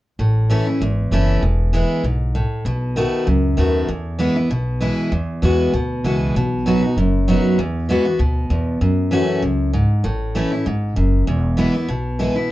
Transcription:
0.19 A1 A2
0.50 E3 A3 C#4 E4
0.67 C#4 E4
0.81 G#1 E2
1.11 F#1 E3 A3 C#4 E4
1.42 E1 E2
1.73 E3 G#3 B3 E4
2.03 B1 G#2
2.35 A2
2.65 B1 B2
2.96 D#3 A3 B3 F#4
3.27 C#2 F#2
3.57 D#2 D#3 A3 B3 F#4
3.88 E2
4.19 E3 G#3 B3 E4
4.36 B3 E4
4.50 B1 B2
4.81 E3 G#3 B3 E4
5.12 E2
5.42 E2 E3 G#3 B3 F#4
5.74 D2 B2
6.04 C#2 E3 G#3 B3 F#4
6.35 B1 B2
6.66 F#3 B3 D#4 F#4
6.83 D#4 F#4
6.97 F#1 F#2
7.28 F#3 B3 D#4 F#4
7.58 E2
7.89 E3 G#3 B3 F#4
8.05 B3 F#4
8.19 D2 B2
8.50 E2
8.81 F#2
9.11 E3 A3 C#4 F#4
9.42 C#2 F#2
9.73 G#2
10.04 A1 A2
10.35 E3 A3 C#4 E4
10.52 C#4 E4
10.66 G#1 G#2
10.96 F#1 F#2
11.27 E1 E2
11.57 E3 G#3 B3 E4
11.74 B3 E4
11.88 B1 B2
12.19 E3 G#3 B3 E4
12.36 B3 E4

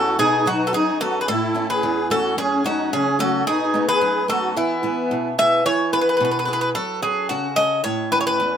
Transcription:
Already playing: E2 A3 C#4 E4 F#4 A4
0.19 B2 D#4 G#4
0.46 F#3 B3 D#4 F#4
0.66 F#4 A4
0.73 F#2 D#4 G#4
1.00 F#3 B3 D#4 F#4 A4
1.21 G#4 B4
1.28 A2 E4 A4
1.55 A3 C#4 E4
1.70 G#4 B4
1.83 E2
2.10 A3 C#4 E4 F#4 A4
2.38 F#2 C#4 G#4
2.64 F#3 A3 C#4 D#4 F#4
2.92 C#3 C#4 G#4
3.19 F#3 A3 C#4 F#4 A4
3.47 B2 D#4 G#4
3.74 A3 B3 D#4
3.88 G#4 B4
4.01 F#2
4.28 A3 B3 D#4 F#4 A4
4.56 E3 B3 E4
4.83 B3 E4 G#4
5.11 B2
5.38 B3 E4 G#4 E5
5.66 E3 C#5
5.93 B3 E4 G#4 B4
6.01 B4
6.09 B4
6.17 B2 B4
6.25 B4
6.31 B4
6.39 B4
6.45 B3 E4 G#4 B4
6.53 B4
6.61 B4
6.75 F#3 A4
7.02 C#4 F#4 G#4 A4
7.29 C#3 F#4
7.56 C#4 F#4 A4 D#5
7.84 A2 C#5
8.12 A3 C#4 E4 B4
8.21 C#5
8.27 B4
8.40 E2

